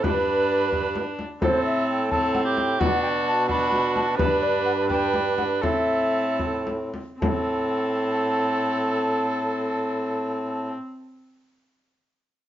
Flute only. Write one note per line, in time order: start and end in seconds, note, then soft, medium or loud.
0.04 0.72 B4 medium
1.43 1.64 C5 medium
1.65 1.88 E5 medium
1.89 2.13 G5 medium
2.12 2.34 A5 loud
2.34 2.40 F#5 medium
2.58 2.82 G5 loud
2.80 3.02 F#5 loud
3.03 3.09 G5 medium
3.26 3.49 A5 loud
3.50 3.95 B5 loud
3.96 4.18 A5 loud
4.18 4.44 B4 loud
4.43 4.65 D5 medium
4.65 4.71 F#5 loud
4.89 5.37 G5 loud
5.38 5.44 F#5 medium
5.63 6.38 E5 medium
7.21 10.73 A5 medium